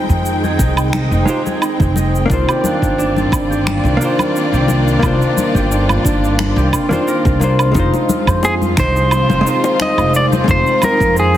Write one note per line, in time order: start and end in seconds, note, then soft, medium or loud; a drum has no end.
0.00 2.26 D#3 medium
0.00 1.21 G#3 medium
0.00 2.26 G#3 medium
0.00 7.71 C4 medium
0.00 0.59 D#4 medium
0.00 1.22 D#4 medium
0.00 2.27 D#4 medium
0.00 1.24 F4 medium
0.00 0.43 G#4 medium
0.00 1.26 C5 medium
0.00 1.24 G5 medium
0.00 2.25 G5 medium
0.09 0.61 F2 medium
0.09 kick medium
0.09 shaker soft
0.26 shaker soft
0.44 1.45 G#4 medium
0.44 high conga medium
0.44 shaker soft
0.59 1.06 C2 medium
0.59 0.93 D#4 medium
0.59 kick medium
0.59 shaker medium
0.77 low woodblock medium
0.77 shaker soft
0.93 1.61 D#4 medium
0.93 finger snap medium
0.93 high conga medium
0.93 shaker soft
1.11 1.24 F1 medium
1.11 shaker soft
1.25 1.40 G#3 medium
1.25 1.40 D#4 medium
1.25 1.41 F4 medium
1.25 1.41 G4 medium
1.25 1.42 C5 loud
1.25 shaker medium
1.46 2.54 G#4 medium
1.46 high conga medium
1.46 shaker soft
1.61 1.96 D#4 medium
1.61 low woodblock medium
1.61 shaker soft
1.80 2.25 F1 medium
1.80 kick medium
1.80 low conga medium
1.80 shaker soft
1.96 2.70 D#4 medium
1.96 high conga medium
1.96 shaker medium
2.15 shaker soft
2.26 3.94 A#3 medium
2.26 3.95 D4 medium
2.30 2.44 C2 medium
2.30 3.96 D#3 medium
2.30 7.71 D#3 medium
2.30 7.71 A#3 medium
2.30 7.71 F4 medium
2.30 3.97 F4 medium
2.30 3.98 C5 medium
2.30 7.71 D5 medium
2.30 kick loud
2.30 shaker soft
2.48 3.50 G4 medium
2.48 low woodblock medium
2.48 shaker soft
2.64 2.98 D4 medium
2.64 high conga medium
2.64 shaker medium
2.82 3.27 G1 medium
2.82 kick medium
2.82 shaker soft
2.98 3.66 D4 loud
2.98 shaker soft
3.17 high conga medium
3.17 shaker soft
3.32 3.78 G1 medium
3.32 kick medium
3.32 low woodblock medium
3.32 shaker medium
3.50 4.53 G4 medium
3.50 shaker soft
3.67 4.00 D4 medium
3.67 finger snap medium
3.67 high conga medium
3.67 shaker soft
3.84 3.96 C2 medium
3.84 low conga medium
3.84 shaker soft
3.97 4.99 D#3 medium
3.97 4.97 A#3 medium
3.97 4.98 D4 medium
3.97 4.68 D4 loud
4.01 5.00 F4 medium
4.01 5.01 C5 medium
4.01 shaker medium
4.19 high conga medium
4.19 low woodblock medium
4.19 shaker soft
4.36 shaker soft
4.53 4.97 C2 medium
4.53 5.55 G4 medium
4.53 shaker soft
4.68 5.02 D4 medium
4.68 high conga medium
4.68 shaker medium
4.88 shaker soft
4.99 5.17 C2 loud
4.99 6.69 D#3 medium
4.99 6.68 A#3 medium
4.99 6.68 D4 medium
4.99 5.70 D4 loud
4.99 kick loud
4.99 low woodblock medium
5.04 6.71 F4 medium
5.04 6.71 C5 medium
5.04 shaker soft
5.22 shaker soft
5.37 high conga medium
5.37 shaker medium
5.55 5.99 G1 medium
5.55 6.57 G4 medium
5.55 kick medium
5.55 shaker soft
5.71 6.04 D4 medium
5.71 shaker soft
5.89 high conga medium
5.89 low woodblock medium
5.89 shaker soft
6.04 6.51 G1 medium
6.04 7.81 D4 medium
6.04 kick medium
6.04 shaker medium
6.24 shaker soft
6.39 finger snap medium
6.39 high conga medium
6.39 shaker soft
6.56 6.69 C2 loud
6.56 8.93 G4 medium
6.56 shaker soft
6.73 7.59 F4 medium
6.73 kick medium
6.73 low woodblock medium
6.73 shaker medium
6.89 7.37 D#3 medium
6.89 7.36 A#3 medium
6.89 7.37 D4 medium
6.89 7.38 F4 medium
6.89 high conga medium
6.89 low conga medium
6.89 shaker soft
6.93 7.38 C5 medium
7.08 9.20 A#4 medium
7.08 shaker soft
7.25 7.70 C2 loud
7.25 kick loud
7.25 low conga medium
7.25 shaker soft
7.40 7.71 A#3 medium
7.40 7.71 D4 medium
7.40 7.72 F4 medium
7.40 high conga medium
7.40 shaker medium
7.44 7.73 C5 medium
7.59 10.12 F4 medium
7.59 low woodblock medium
7.59 shaker soft
7.72 7.89 F1 loud
7.72 11.37 D#3 medium
7.72 11.37 F3 medium
7.72 9.40 G#3 medium
7.72 11.37 G#3 medium
7.72 11.37 C4 medium
7.72 8.77 D#4 loud
7.72 9.42 D#4 medium
7.72 11.37 F4 medium
7.72 kick loud
7.72 low conga loud
7.76 9.43 F4 medium
7.76 9.44 C5 medium
7.76 shaker soft
7.94 high bongo medium
7.94 shaker soft
8.09 high conga loud
8.09 shaker medium
8.27 8.79 F2 medium
8.27 9.29 C5 medium
8.27 kick medium
8.27 low woodblock medium
8.27 shaker soft
8.43 8.54 G#4 medium
8.43 high bongo medium
8.43 shaker soft
8.62 high conga medium
8.62 shaker soft
8.77 9.23 C2 medium
8.77 9.79 D#4 loud
8.77 9.82 C5 loud
8.77 finger snap medium
8.77 kick loud
8.77 low conga medium
8.77 shaker medium
8.96 shaker soft
9.11 high bongo soft
9.11 low woodblock medium
9.11 shaker soft
9.29 9.42 F1 loud
9.29 10.31 C5 medium
9.29 high conga medium
9.29 shaker soft
9.41 10.42 G#3 loud
9.41 10.43 C4 medium
9.45 10.44 D#4 medium
9.45 10.45 F4 medium
9.45 shaker medium
9.49 10.46 C5 loud
9.64 high bongo medium
9.64 shaker soft
9.80 10.81 D#4 loud
9.80 10.16 D#5 loud
9.80 finger snap medium
9.80 high conga medium
9.80 shaker soft
9.98 10.42 F1 medium
9.98 low woodblock medium
9.98 shaker soft
10.14 10.25 D5 loud
10.14 shaker medium
10.32 11.34 C5 medium
10.32 high bongo medium
10.32 high conga medium
10.32 shaker soft
10.44 10.62 F1 loud
10.44 11.37 G#3 medium
10.44 11.37 C4 medium
10.44 11.37 D#4 medium
10.48 11.37 F4 medium
10.48 10.81 C5 loud
10.48 11.37 C5 medium
10.48 kick loud
10.48 low conga medium
10.48 shaker soft
10.67 shaker soft
10.82 11.37 D#4 medium
10.82 11.18 A#4 medium
10.82 high bongo medium
10.82 high conga medium
10.82 low woodblock medium
10.82 shaker medium
11.00 11.37 F2 loud
11.00 kick medium
11.00 shaker soft
11.17 11.37 G#4 medium
11.17 shaker soft
11.34 11.37 C5 medium